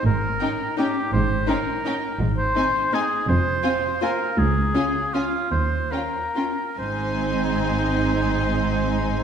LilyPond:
<<
  \new Staff \with { instrumentName = "Violin section" } { \time 3/4 \key aes \major \tempo 4 = 160 r4 g''4 g''4 | r4 g''4 g''4 | r4 aes''4 aes''4 | r4 aes''4 aes''4 |
r4 aes''4 aes''4 | r4 g''4 g''4 | aes''2.~ | aes''2. | }
  \new Staff \with { instrumentName = "Oboe" } { \time 3/4 \key aes \major bes'2 g'4 | c''4 bes'2 | r8 c''4. aes'4 | c''2 bes'4 |
aes'2 f'4 | c''4 bes'2 | c''2.~ | c''2. | }
  \new Staff \with { instrumentName = "Violin section" } { \time 3/4 \key aes \major r4 ees'4 ees'4 | r4 ees'4 ees'4 | r4 ees'4 ees'4 | r4 f'4 f'4 |
r4 f'4 f'4 | r4 f'4 f'4 | ees'2.~ | ees'2. | }
  \new Staff \with { instrumentName = "Viola section" } { \time 3/4 \key aes \major r4 des'4 des'4 | r4 des'4 des'4 | r4 c'4 c'4 | r4 c'4 c'4 |
r4 des'4 des'4 | r4 des'4 des'4 | c'2.~ | c'2. | }
  \new Staff \with { instrumentName = "Cello section" } { \clef bass \time 3/4 \key aes \major aes,4 r2 | aes,4 r2 | aes,4 r2 | f,4 r2 |
des,4 r2 | ees,4 r2 | aes,2.~ | aes,2. | }
  \new Staff \with { instrumentName = "Double bass section" } { \clef bass \time 3/4 \key aes \major aes,,4 r2 | aes,,4 r2 | aes,,4 r2 | f,,4 r2 |
des,4 r2 | ees,4 r2 | aes,,2.~ | aes,,2. | }
>>